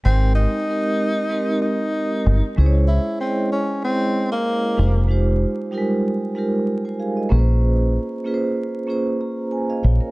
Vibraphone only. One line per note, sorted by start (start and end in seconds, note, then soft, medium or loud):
0.04 0.59 G#3 medium
0.04 0.59 C4 medium
0.04 0.60 D#4 medium
0.04 0.60 G4 medium
0.04 0.61 A#4 medium
0.67 1.22 G#3 medium
0.67 1.23 C4 medium
0.67 1.23 D#4 medium
0.67 1.24 G4 medium
0.67 1.24 A#4 medium
1.29 2.39 G#3 medium
1.29 2.39 C4 medium
1.29 2.40 D#4 medium
1.29 2.40 G4 medium
1.29 2.41 A#4 medium
2.56 3.11 G#3 medium
2.56 3.12 C#4 medium
2.56 3.12 E4 medium
2.56 3.13 G#4 medium
2.56 2.66 C5 medium
2.66 3.16 C#5 loud
3.20 3.75 G#3 medium
3.20 3.76 E4 medium
3.20 3.76 G#4 medium
3.20 3.76 D#5 medium
3.83 4.76 G#3 medium
3.83 4.79 E4 medium
3.83 4.79 G#4 medium
3.83 4.80 D#5 medium
4.77 5.05 G#3 medium
4.77 5.05 D#4 medium
4.77 5.06 F4 medium
4.77 5.06 G4 medium
4.77 5.07 C5 medium
5.08 5.64 G#3 medium
5.08 5.64 D#4 medium
5.08 5.64 F4 medium
5.08 5.65 G4 medium
5.08 5.65 C5 medium
5.71 5.79 G3 medium
5.71 6.27 D#4 medium
5.71 6.28 F4 medium
5.71 6.28 G4 medium
5.71 6.29 A#4 medium
5.78 6.30 G#3 medium
6.35 7.31 G#3 medium
6.35 7.31 D#4 medium
6.35 7.30 F4 medium
6.35 6.69 G4 medium
6.35 6.69 A#4 medium
6.85 6.99 C5 medium
6.85 6.99 G#5 medium
7.00 7.16 G#4 medium
7.00 7.16 F5 medium
7.17 7.47 D#5 medium
7.29 8.12 A#3 medium
7.29 8.13 C#4 medium
7.29 8.13 F4 medium
7.29 8.13 G#4 medium
7.29 7.39 B4 medium
7.39 8.17 C5 loud
8.24 8.80 A#3 medium
8.24 8.80 C#4 medium
8.24 8.81 F4 medium
8.24 8.81 G#4 medium
8.24 8.34 B4 medium
8.34 8.85 C5 loud
8.87 9.97 A#3 medium
8.87 9.52 C#4 medium
8.87 9.52 F4 medium
8.87 9.52 G#4 medium
8.87 9.53 C5 medium
9.21 9.50 A#5 medium
9.52 9.68 G#5 medium
9.70 9.84 G#4 medium
9.70 9.83 D#5 medium
9.70 9.82 F5 medium
9.83 10.00 F4 medium
9.83 10.00 C#5 medium
9.83 10.11 F5 medium
10.01 10.11 C#4 medium
10.01 10.11 A#4 medium